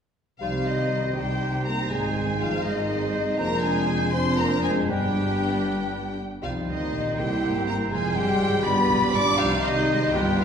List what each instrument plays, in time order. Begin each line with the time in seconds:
0.40 double bass section C2, cello section C3, french horn section F3, viola section G3 D#4, bassoon G3, clarinet D#4, violin section F4 F5, oboe C5, flute F5
0.54 viola section C4 G4
0.65 french horn section D#3, viola section G3 D#4, violin section D#4 D#5, flute D#5
0.79 viola section C4 G4
0.91 viola section G3 D#4
1.04 viola section C4 G4
1.14 double bass section C2, cello section C3, french horn section G3, bassoon G3, viola section G3 D#4, clarinet D#4, violin section G4 G5, oboe C5, flute G5
1.29 viola section C4 G4
1.41 viola section G3 D#4
1.54 viola section C4 G4
1.66 viola section G3 D#4, french horn section A#3, violin section A#4 A#5, flute A#5
1.80 viola section C4 G4
1.90 double bass section G#1, cello section G#2, bassoon G#3, french horn section G#3, viola section G#3 D#4, clarinet D#4, violin section G#4 G#5, oboe C5, flute G#5
2.05 viola section C4 G#4
2.17 viola section G#3 D#4
2.29 viola section C4 G#4
2.38 french horn section F3, viola section G#3 D#4, violin section F4 F5, flute F5
2.52 viola section C4 G#4
2.63 double bass section G#1, cello section G#2, french horn section D#3, bassoon G#3, viola section G#3 D#4, violin section D#4 D#5, clarinet D#4, oboe C5, flute D#5
2.77 viola section C4 G#4
2.90 viola section G#3 D#4
3.02 viola section C4 G#4
3.15 viola section G#3 D#4
3.26 viola section C4 G#4
3.37 double bass section F1, cello section F2, bassoon F3, french horn section A#3, viola section C4 D4, clarinet D4, violin section A#4 A#5, oboe C5, flute A#5
3.62 french horn section G#3, violin section G#4 G#5, flute G#5
4.13 bassoon F3, french horn section C4, viola section C4 D4, clarinet D4, violin section C5 C6, oboe C5, flute C6
4.38 french horn section A#3, violin section A#4 A#5, flute A#5
4.62 french horn section G#3, violin section G#4 G#5, flute G#5
4.88 double bass section G1, cello section G2, bassoon G3, french horn section G3, viola section B3 D4, clarinet D4, violin section G4 G5, oboe B4, flute G5
6.43 double bass section C2, cello section C3, french horn section F3, bassoon G3, viola section C4 D#4, clarinet D#4, violin section F4 F5, oboe C5, flute F5
6.67 double bass section D2, cello section D3, french horn section D#3, violin section D#4 D#5, flute D#5
6.92 double bass section A#1, cello section A#2
7.17 double bass section C2, cello section C3, french horn section G3, viola section A#3 E4, bassoon A#3, clarinet E4, violin section G4 G5, flute G5
7.42 double bass section G#1, cello section G#2
7.66 double bass section G1, cello section G2, french horn section A#3, violin section A#4 A#5, flute A#5
7.89 double bass section F1, cello section F2, french horn section G#3, bassoon G#3, viola section G#3 F4, clarinet F4, violin section G#4 G#5, flute G#5
8.15 double bass section G1, cello section G2, french horn section G3, violin section G4 G5, flute G5
8.40 double bass section G#1, cello section G#2
8.63 double bass section G1, cello section G2, bassoon G3, viola section G3 D4, french horn section B3, violin section B4 B5, oboe D5, flute B5
8.89 double bass section B1, cello section B2
9.13 double bass section G#1, cello section G#2, french horn section D4, violin section D5 D6, flute D6
9.37 double bass section C2, cello section C3, french horn section F3, bassoon G3, viola section G3 D#4, clarinet D#4, violin section F4 F5, oboe C5, flute F5
9.62 french horn section D#3, violin section D#4 D#5, flute D#5
9.76 viola section G#3
10.13 double bass section G1, cello section G2, bassoon G3, french horn section G3, viola section B3 F4, clarinet F4, violin section G4 G5, oboe B4, flute G5
10.39 french horn section F3, violin section F4 F5, flute F5